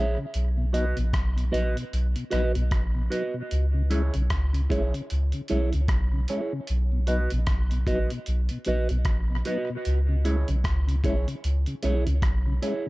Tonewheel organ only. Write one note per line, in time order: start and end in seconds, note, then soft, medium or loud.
0.18 0.26 C#3 medium
0.57 0.66 B2 medium
0.73 0.85 F#3 medium
0.73 0.86 B3 medium
0.73 0.86 D#4 medium
0.96 1.05 B2 medium
1.36 1.45 B2 medium
1.51 1.64 F#3 medium
1.51 1.64 B3 medium
1.51 1.64 D#4 medium
1.76 1.84 B2 medium
2.16 2.24 B2 medium
2.32 2.44 F#3 medium
2.32 2.44 B3 medium
2.32 2.44 D#4 medium
2.56 2.64 B2 medium
2.95 3.03 B2 medium
3.11 3.23 F#3 medium
3.11 3.23 B3 medium
3.11 3.23 D#4 medium
3.34 3.43 B2 medium
3.74 3.82 C#3 medium
3.90 4.02 G#3 medium
3.90 4.02 C#4 medium
3.90 4.02 E4 medium
4.14 4.22 C#3 medium
4.53 4.62 C#3 medium
4.70 4.82 G#3 medium
4.70 4.82 C#4 medium
4.70 4.82 E4 medium
4.94 5.02 C#3 medium
5.34 5.42 C#3 soft
5.49 5.61 G#3 medium
5.49 5.61 C#4 medium
5.49 5.61 E4 medium
5.74 5.81 C#3 medium
6.13 6.21 C#3 medium
6.29 6.41 G#3 medium
6.29 6.41 C#4 medium
6.29 6.41 E4 medium
6.53 6.60 C#3 medium
6.92 7.00 B2 medium
7.08 7.20 F#3 medium
7.08 7.20 B3 medium
7.08 7.20 D#4 medium
7.32 7.40 B2 medium
7.71 7.79 B2 medium
7.88 7.99 F#3 medium
7.88 7.99 B3 medium
7.88 8.00 D#4 medium
8.12 8.19 B2 medium
8.51 8.58 B2 medium
8.66 8.78 F#3 medium
8.66 8.78 B3 medium
8.66 8.78 D#4 medium
8.90 8.98 B2 medium
9.31 9.38 B2 medium
9.47 9.58 F#3 medium
9.47 9.58 B3 medium
9.47 9.58 D#4 medium
9.70 9.77 B2 medium
10.09 10.17 C#3 medium
10.25 10.36 G#3 medium
10.25 10.36 C#4 medium
10.25 10.36 E4 medium
10.48 10.56 C#3 medium
10.87 10.96 C#3 medium
11.04 11.15 G#3 medium
11.04 11.15 C#4 medium
11.04 11.16 E4 medium
11.27 11.35 C#3 medium
11.67 11.75 C#3 medium
11.82 11.94 G#3 medium
11.82 11.95 C#4 medium
11.82 11.95 E4 medium
12.06 12.14 C#3 medium
12.46 12.54 C#3 medium
12.62 12.74 G#3 medium
12.62 12.74 C#4 medium
12.62 12.74 E4 medium
12.86 12.89 C#3 medium